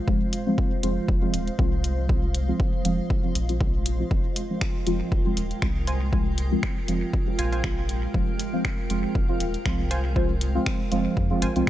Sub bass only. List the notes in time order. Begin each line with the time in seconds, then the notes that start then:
0.08 F1
0.83 F1
1.08 F1
1.34 D#1
1.59 C2
2.85 F1
3.35 A#1
4.11 F1
4.87 F1
5.12 F1
5.37 D#1
5.62 C2
6.88 F1
7.39 A#1
8.14 F1
8.90 F1
9.15 F1
9.40 D#1
9.66 C2
10.92 F1
11.17 F2
11.42 G#1
11.56 C2